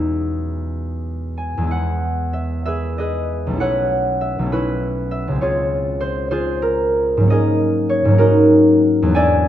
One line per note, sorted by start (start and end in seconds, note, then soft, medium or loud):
0.00 1.56 E2 medium
0.00 1.60 G#3 soft
0.00 1.63 B3 medium
0.00 3.53 D#4 soft
0.00 1.74 F#4 soft
0.00 2.66 G#4 soft
0.00 2.55 D#5 medium
0.00 2.32 E5 soft
0.00 1.60 F#5 medium
0.00 2.55 D#6 medium
0.00 3.56 E6 medium
1.38 3.62 G#5 medium
1.58 3.55 E2 medium
1.58 3.57 G#3 soft
1.64 5.40 B3 soft
1.64 3.55 E4 soft
1.71 2.78 F#5 medium
2.33 2.64 E5 medium
2.66 2.98 G#4 medium
2.66 2.98 B4 medium
2.66 4.20 E5 medium
2.98 3.63 G#4 medium
2.98 3.60 B4 medium
2.98 3.62 D#5 medium
3.47 4.38 B1 medium
3.47 4.41 A3 soft
3.53 4.45 C#4 soft
3.53 4.52 E4 soft
3.60 4.51 B4 medium
3.60 5.40 C#5 medium
3.60 5.45 F#5 medium
4.21 5.10 E5 medium
4.39 5.38 B1 medium
4.39 5.40 A3 medium
4.46 7.26 C#4 medium
4.52 5.45 E4 medium
4.52 5.45 F#4 medium
4.52 5.45 B4 medium
5.11 5.44 E5 medium
5.28 7.25 C#2 medium
5.28 9.21 G#3 soft
5.35 7.28 C4 soft
5.41 6.31 F4 medium
5.41 6.31 G#4 medium
5.41 7.88 C#5 medium
6.00 6.30 C5 medium
6.31 7.32 F4 medium
6.31 7.31 G#4 medium
6.31 7.31 C5 medium
6.62 7.30 A#4 medium
7.17 8.04 G#2 medium
7.17 8.07 F#3 medium
7.23 8.10 A#3 medium
7.27 8.13 C#4 medium
7.27 8.17 A#4 medium
7.27 9.18 D#5 medium
7.32 9.48 G#4 medium
7.89 9.17 C#5 medium
8.05 9.11 G#2 medium
8.05 9.04 F#3 medium
8.12 9.14 A#3 medium
8.12 9.15 C#4 medium
8.18 9.18 D#4 medium
8.18 9.48 F#4 medium
8.18 9.17 A#4 medium
9.02 9.48 E2 medium
9.02 9.48 F#3 medium
9.09 9.48 B3 medium
9.09 9.48 D4 medium
9.15 9.48 D5 medium
9.15 9.48 E5 medium
9.15 9.48 G#5 loud